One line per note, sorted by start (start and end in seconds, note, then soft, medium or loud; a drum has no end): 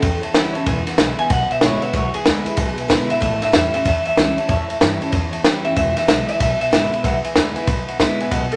0.00 0.22 E2 medium
0.00 0.64 E2 medium
0.00 0.21 A4 loud
0.00 0.15 C#5 medium
0.00 0.15 E5 medium
0.00 0.15 G5 loud
0.00 kick loud
0.00 ride medium
0.21 0.29 C#5 loud
0.21 0.30 E5 medium
0.21 0.30 A5 loud
0.21 ride medium
0.34 0.54 C#2 loud
0.34 0.54 E3 medium
0.34 0.54 G3 medium
0.34 0.55 C#4 medium
0.34 0.53 E4 loud
0.34 0.46 C#5 medium
0.34 0.47 F#5 loud
0.34 snare loud
0.34 ride medium
0.53 0.66 C#2 medium
0.53 0.67 C#4 medium
0.53 0.66 E4 medium
0.53 0.61 C#5 loud
0.53 0.62 E5 loud
0.53 0.62 A5 loud
0.53 ride medium
0.66 0.86 E1 loud
0.66 1.28 E2 medium
0.66 0.79 B4 loud
0.66 0.79 E5 loud
0.66 0.79 G#5 loud
0.66 kick loud
0.66 ride medium
0.87 0.94 B4 medium
0.87 0.94 E5 medium
0.87 0.95 F#5 medium
0.87 muted upright bass stroke medium
0.87 snare soft
0.87 ride medium
0.98 1.17 B1 medium
0.98 1.18 D3 medium
0.98 1.18 G#3 medium
0.98 1.19 B3 medium
0.98 1.19 E4 medium
0.98 1.10 B4 medium
0.98 1.11 E5 medium
0.98 1.11 G#5 loud
0.98 snare loud
0.98 ride medium
1.17 1.31 E4 medium
1.17 1.25 B4 medium
1.17 1.25 E5 medium
1.17 1.26 G#5 medium
1.17 1.30 G#5 loud
1.17 ride medium
1.22 1.31 B3 soft
1.29 1.49 B1 medium
1.29 1.92 B2 medium
1.29 1.42 B4 medium
1.29 1.43 E5 medium
1.29 1.50 F#5 medium
1.29 1.43 G#5 medium
1.29 kick loud
1.29 ride medium
1.50 1.57 B4 medium
1.50 1.58 E5 medium
1.50 1.63 E5 medium
1.50 1.58 G#5 medium
1.50 ride medium
1.61 1.82 G#1 medium
1.61 1.82 D3 medium
1.61 1.82 G#3 loud
1.61 1.82 B3 medium
1.61 1.82 E4 loud
1.61 1.75 B4 medium
1.61 1.82 C#5 medium
1.61 1.75 E5 medium
1.61 1.76 G#5 medium
1.61 snare loud
1.61 ride medium
1.82 1.95 B3 soft
1.82 1.94 E4 medium
1.82 1.89 B4 medium
1.82 1.95 E5 medium
1.82 1.90 E5 loud
1.82 1.90 F#5 loud
1.82 ride medium
1.93 2.13 B1 loud
1.93 2.56 E2 medium
1.93 2.06 B4 loud
1.93 2.14 C#5 loud
1.93 2.07 E5 medium
1.93 2.07 F#5 loud
1.93 kick loud
1.93 ride medium
2.14 2.77 G#4 loud
2.14 2.21 B4 medium
2.14 2.22 G#5 medium
2.14 ride medium
2.25 2.45 D2 medium
2.25 2.45 D3 medium
2.25 2.46 G#3 medium
2.25 2.46 B3 medium
2.25 2.44 E4 loud
2.25 2.39 E5 medium
2.25 2.40 F#5 medium
2.25 snare loud
2.25 ride medium
2.45 2.58 B3 soft
2.45 2.57 E4 medium
2.45 2.54 B4 medium
2.45 2.54 E5 medium
2.45 2.54 B5 loud
2.45 muted upright bass stroke medium
2.45 ride medium
2.57 2.76 B1 medium
2.57 3.19 B2 medium
2.57 2.70 B4 medium
2.57 2.71 E5 medium
2.57 2.71 G#5 loud
2.57 kick loud
2.57 ride medium
2.78 2.85 B4 medium
2.78 2.86 E5 medium
2.78 2.86 G#5 medium
2.78 muted upright bass stroke medium
2.78 ride medium
2.88 3.09 G#1 medium
2.88 3.09 D3 medium
2.88 3.09 G#3 medium
2.88 3.09 B3 medium
2.88 3.09 E4 loud
2.88 3.03 B4 medium
2.88 kick medium
2.88 snare loud
2.88 ride medium
2.92 3.03 G#5 loud
3.10 3.21 G#1 medium
3.10 3.22 B3 soft
3.10 3.21 E4 medium
3.10 3.18 B4 loud
3.10 3.21 E5 loud
3.10 3.18 E5 medium
3.10 3.19 B5 loud
3.10 ride medium
3.21 3.41 A1 loud
3.21 3.83 A2 medium
3.21 3.34 C#5 medium
3.21 3.42 E5 medium
3.21 3.34 E5 medium
3.21 3.35 A5 loud
3.21 kick loud
3.21 ride medium
3.42 3.49 C#5 medium
3.42 3.54 E5 medium
3.42 3.50 E5 medium
3.42 3.50 A5 medium
3.42 muted upright bass stroke medium
3.42 snare soft
3.42 ride medium
3.52 3.73 E2 medium
3.52 3.72 E3 medium
3.52 3.73 G3 medium
3.52 3.73 C#4 medium
3.52 3.72 E4 medium
3.52 3.66 E5 medium
3.52 3.74 E5 medium
3.52 3.66 G5 medium
3.52 snare loud
3.52 ride medium
3.73 3.86 C#4 soft
3.73 3.85 E4 medium
3.73 3.81 C#5 medium
3.73 3.81 E5 medium
3.73 3.86 E5 loud
3.73 3.82 B5 loud
3.73 ride medium
3.85 4.47 E2 medium
3.85 4.04 E2 medium
3.85 3.98 C#5 medium
3.85 3.98 E5 medium
3.85 4.06 E5 loud
3.85 3.99 A5 medium
3.85 kick loud
3.85 ride loud
4.05 4.13 C#5 medium
4.05 4.13 E5 medium
4.05 4.99 E5 medium
4.05 4.13 A5 medium
4.05 muted upright bass stroke medium
4.05 ride medium
4.17 4.36 C#2 medium
4.17 4.37 E3 medium
4.17 4.37 G3 medium
4.17 4.38 C#4 loud
4.17 4.37 E4 medium
4.17 4.29 E5 medium
4.17 4.30 A5 medium
4.17 snare loud
4.17 ride medium
4.37 4.50 C#4 medium
4.37 4.49 E4 medium
4.37 4.44 C#5 loud
4.37 4.44 E5 medium
4.37 4.45 A5 loud
4.37 muted upright bass stroke medium
4.37 ride medium
4.48 4.68 E2 loud
4.48 5.11 A2 medium
4.48 4.61 C#5 loud
4.48 4.62 E5 loud
4.48 4.62 A5 loud
4.48 kick loud
4.48 ride medium
4.68 4.76 C#5 medium
4.68 4.76 E5 medium
4.68 4.77 A5 medium
4.68 muted upright bass stroke medium
4.68 ride medium
4.80 5.00 G2 medium
4.80 5.00 E3 medium
4.80 5.01 G3 medium
4.80 5.01 C#4 medium
4.80 5.00 E4 medium
4.80 4.93 C#5 medium
4.80 4.93 E5 medium
4.80 4.94 A5 loud
4.80 snare loud
4.80 ride medium
5.01 5.13 C#4 soft
5.01 5.12 E4 medium
5.01 5.08 C#5 loud
5.01 5.08 E5 medium
5.01 5.09 A5 loud
5.01 ride medium
5.11 5.74 E2 medium
5.11 5.32 E2 medium
5.11 5.24 C#5 medium
5.11 5.25 E5 medium
5.11 5.25 A5 loud
5.11 kick loud
5.11 ride medium
5.31 5.39 C#5 medium
5.31 5.40 E5 medium
5.31 5.40 A5 medium
5.31 ride medium
5.43 5.64 C#2 medium
5.43 5.64 E3 loud
5.43 5.65 G3 medium
5.43 5.65 C#4 loud
5.43 5.64 E4 medium
5.43 5.56 C#5 medium
5.43 5.57 G5 loud
5.43 snare loud
5.43 ride medium
5.63 5.76 F#1 medium
5.63 5.77 C#4 soft
5.63 5.76 E4 medium
5.63 5.71 C#5 medium
5.63 5.72 E5 medium
5.63 5.76 E5 loud
5.63 5.72 G5 loud
5.63 ride medium
5.75 5.96 E1 loud
5.75 6.38 E2 medium
5.75 5.88 B4 loud
5.75 5.89 E5 medium
5.75 5.96 E5 loud
5.75 5.89 G#5 loud
5.75 kick loud
5.75 ride medium
5.95 6.03 B4 medium
5.95 6.08 E5 medium
5.95 6.04 G#5 medium
5.95 muted upright bass stroke medium
5.95 snare soft
5.95 ride medium
6.07 6.28 B1 medium
6.07 6.27 D3 medium
6.07 6.28 G#3 medium
6.07 6.28 B3 medium
6.07 6.27 E4 medium
6.07 6.28 E5 medium
6.07 6.21 G#5 medium
6.07 snare loud
6.07 ride medium
6.28 6.40 B3 soft
6.28 6.40 E4 medium
6.28 6.35 B4 loud
6.28 6.40 E5 medium
6.28 6.36 E5 medium
6.28 6.36 G#5 medium
6.28 muted upright bass stroke medium
6.28 ride medium
6.40 6.59 B1 medium
6.40 7.02 B2 medium
6.40 6.60 E5 loud
6.40 6.53 G#5 medium
6.40 kick loud
6.40 ride loud
6.60 6.67 B4 medium
6.60 6.68 E5 medium
6.60 7.54 E5 loud
6.60 6.68 G#5 medium
6.60 muted upright bass stroke medium
6.60 ride medium
6.71 6.91 G#1 medium
6.71 6.91 D3 medium
6.71 6.92 G#3 medium
6.71 6.92 B3 medium
6.71 6.91 E4 loud
6.71 6.84 E5 medium
6.71 snare loud
6.71 ride medium
6.92 7.05 B3 soft
6.92 7.04 E4 medium
6.92 6.99 B4 loud
6.92 7.00 E5 medium
6.92 7.00 B5 loud
6.92 muted upright bass stroke medium
6.92 ride medium
7.03 7.23 B1 loud
7.03 7.66 E2 medium
7.03 7.16 B4 loud
7.03 7.16 E5 loud
7.03 7.17 F#5 loud
7.03 kick loud
7.03 ride medium
7.23 7.31 B4 medium
7.23 7.32 E5 medium
7.23 7.32 G#5 loud
7.23 ride medium
7.35 7.55 D2 medium
7.35 7.55 D3 medium
7.35 7.56 G#3 medium
7.35 7.56 B3 medium
7.35 7.55 E4 medium
7.35 7.48 B4 medium
7.35 7.48 E5 medium
7.35 7.48 G#5 loud
7.35 snare loud
7.35 ride medium
7.55 7.68 B3 soft
7.55 7.67 E4 medium
7.55 7.62 B4 loud
7.55 7.63 E5 loud
7.55 7.63 G#5 loud
7.55 muted upright bass stroke medium
7.55 ride medium
7.66 7.87 B1 medium
7.66 8.30 B2 medium
7.66 7.79 B4 medium
7.66 7.80 E5 medium
7.66 7.80 B5 loud
7.66 kick loud
7.66 ride medium
7.87 7.94 B4 medium
7.87 7.95 E5 medium
7.87 7.95 F#5 loud
7.87 muted upright bass stroke medium
7.87 ride medium
7.98 8.18 G#1 medium
7.98 8.19 D3 medium
7.98 8.20 G#3 loud
7.98 8.20 B3 loud
7.98 8.19 E4 loud
7.98 8.11 B4 medium
7.98 8.12 B5 medium
7.98 kick medium
7.98 snare loud
7.98 ride medium
8.19 8.30 G#1 medium
8.19 8.32 B3 medium
8.19 8.31 E4 medium
8.19 8.27 B4 loud
8.19 8.27 E5 loud
8.19 8.28 G#5 loud
8.19 ride medium
8.30 8.50 B1 medium
8.30 8.56 B2 loud
8.30 8.43 B4 loud
8.30 8.44 D#5 loud
8.30 8.44 F#5 loud
8.30 kick loud
8.30 ride medium
8.51 8.56 B4 medium
8.51 8.56 B4 loud
8.51 8.56 D#5 medium
8.51 8.56 F#5 medium
8.51 ride medium